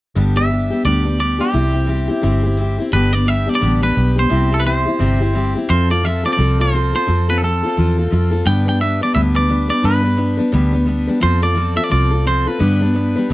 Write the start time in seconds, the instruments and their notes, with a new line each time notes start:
0.15 fingered electric bass G1, steel-string acoustic guitar G2 D3 G3 B3 D4 G4
0.36 steel-string acoustic guitar G3 B3 D4 G4, clean electric guitar E5
0.50 steel-string acoustic guitar G3 B3 D4 G4
0.70 steel-string acoustic guitar G3 B3 D4 G4
0.84 fingered electric bass D2, steel-string acoustic guitar G2 D3 G3 B3 D4 G4, clean electric guitar D5
1.04 steel-string acoustic guitar G3 B3 D4 G4
1.19 steel-string acoustic guitar G3 B3 D4 G4, clean electric guitar D5
1.39 steel-string acoustic guitar G3 B3 D4 G4, clean electric guitar G4
1.52 fingered electric bass C2, steel-string acoustic guitar C3 G3 C4 E4 G4
1.72 steel-string acoustic guitar C4 E4 G4
1.86 steel-string acoustic guitar G3 C4 E4 G4
2.08 steel-string acoustic guitar C4 E4 G4
2.22 fingered electric bass G1, steel-string acoustic guitar C3 G3 C4 E4 G4
2.43 steel-string acoustic guitar C4 E4 G4
2.57 steel-string acoustic guitar G3 C4 E4 G4
2.78 steel-string acoustic guitar C4 E4 G4
2.92 fingered electric bass G1, steel-string acoustic guitar G2 D3 G3 B3 D4 G4, clean electric guitar B4
3.12 steel-string acoustic guitar G3 B3 D4 G4, clean electric guitar D5
3.26 steel-string acoustic guitar G3 B3 D4 G4, clean electric guitar E5
3.46 steel-string acoustic guitar G3 B3 D4 G4, clean electric guitar D5
3.55 clean electric guitar D5
3.61 fingered electric bass A1, steel-string acoustic guitar G2 D3 G3 B3 D4 G4
3.82 steel-string acoustic guitar G3 B3 D4 G4, clean electric guitar B4
3.95 fingered electric bass B1, steel-string acoustic guitar G3 B3 D4 G4
4.16 steel-string acoustic guitar G3 B3 D4 G4, clean electric guitar C5
4.29 fingered electric bass C2, steel-string acoustic guitar C3 G3 C4 E4 G4
4.50 steel-string acoustic guitar C4 E4 G4, clean electric guitar A4
4.60 clean electric guitar B4
4.64 steel-string acoustic guitar G3 C4 E4 G4, clean electric guitar C5
4.86 steel-string acoustic guitar C4 E4 G4
4.99 fingered electric bass G1, steel-string acoustic guitar C3 G3 C4 E4 G4
5.21 steel-string acoustic guitar C4 E4 G4
5.33 steel-string acoustic guitar G3 C4 E4 G4
5.55 steel-string acoustic guitar C4 E4 G4
5.70 fingered electric bass F2, steel-string acoustic guitar F3 C4 F4 A4, clean electric guitar C5
5.90 steel-string acoustic guitar C4 F4 A4, clean electric guitar D5
6.03 steel-string acoustic guitar F3 C4 F4 A4, clean electric guitar E5
6.23 steel-string acoustic guitar C4 F4 A4, clean electric guitar D5
6.33 steel-string acoustic guitar F3, clean electric guitar D5
6.38 fingered electric bass C2, steel-string acoustic guitar C4 F4 A4
6.59 steel-string acoustic guitar C4 F4 A4, clean electric guitar C5
6.72 steel-string acoustic guitar F3 C4 F4 A4
6.93 steel-string acoustic guitar C4 F4 A4, clean electric guitar C5
7.07 fingered electric bass F2, steel-string acoustic guitar F3 C4 F4 A4
7.28 steel-string acoustic guitar C4 F4 A4, clean electric guitar B4
7.38 clean electric guitar A4
7.42 steel-string acoustic guitar F3 C4 F4 A4, clean electric guitar A4
7.63 steel-string acoustic guitar C4 F4 A4
7.77 fingered electric bass E2, steel-string acoustic guitar F3 C4 F4 A4
7.98 steel-string acoustic guitar C4 F4 A4
8.11 fingered electric bass F2, steel-string acoustic guitar F3 C4 F4 A4
8.31 steel-string acoustic guitar C4 F4 A4
8.45 steel-string acoustic guitar G2 D3 G3 B3 D4 B4, fingered electric bass G2, clean electric guitar G5
8.65 steel-string acoustic guitar G3 B3 D4 B4, clean electric guitar G5
8.80 steel-string acoustic guitar G3 B3 D4 B4, clean electric guitar E5
9.01 steel-string acoustic guitar G3 B3 D4 B4, clean electric guitar D5
9.14 fingered electric bass D2, steel-string acoustic guitar G2 D3 G3 B3 D4 B4, clean electric guitar E5
9.35 steel-string acoustic guitar G3 B3 D4 B4, clean electric guitar D5
9.48 steel-string acoustic guitar G3 B3 D4 B4
9.68 steel-string acoustic guitar G3 B3 D4 B4, clean electric guitar D5
9.82 steel-string acoustic guitar G2 D3 G3 B3 D4 B4, fingered electric bass G2, clean electric guitar B4
10.03 steel-string acoustic guitar G3 B3 D4 B4
10.17 steel-string acoustic guitar G3 B3 D4 B4
10.37 steel-string acoustic guitar G3 B3 D4 B4
10.52 fingered electric bass D2, steel-string acoustic guitar G2 D3 G3 B3 D4 B4
10.73 steel-string acoustic guitar G3 B3 D4 B4
10.86 steel-string acoustic guitar G3 B3 D4 B4
11.07 steel-string acoustic guitar G3 B3 D4 B4
11.20 fingered electric bass F2, steel-string acoustic guitar F3 C4 F4 A4, clean electric guitar C5
11.42 steel-string acoustic guitar C4 F4 A4, clean electric guitar D5
11.54 steel-string acoustic guitar F3 C4 F4 A4
11.76 steel-string acoustic guitar C4 F4 A4, clean electric guitar E5
11.84 clean electric guitar D5
11.90 fingered electric bass C2, steel-string acoustic guitar F3 C4 F4 A4, clean electric guitar D5
12.11 steel-string acoustic guitar C4 F4 A4
12.25 steel-string acoustic guitar F3 C4 F4 A4, clean electric guitar C5
12.46 steel-string acoustic guitar C4 F4 A4, clean electric guitar B4
12.59 steel-string acoustic guitar G2 D3 G3 B3 D4 B4, fingered electric bass G2
12.81 steel-string acoustic guitar G3 B3 D4 B4
12.94 steel-string acoustic guitar G3 B3 D4 B4
13.16 steel-string acoustic guitar G3 B3 D4 B4
13.30 steel-string acoustic guitar G2 D3